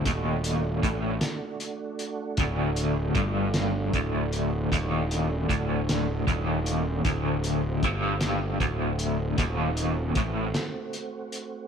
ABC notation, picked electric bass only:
X:1
M:6/8
L:1/8
Q:3/8=51
K:none
V:1 name="Picked electric bass" clef=bass
_E,,,2 A,,, z3 | D,,,2 G,,,2 D,,,2 | _E,,,2 D,,,2 E,,,2 | D,,,2 G,,,2 D,,,2 |
_E,,,2 A,,, z3 |]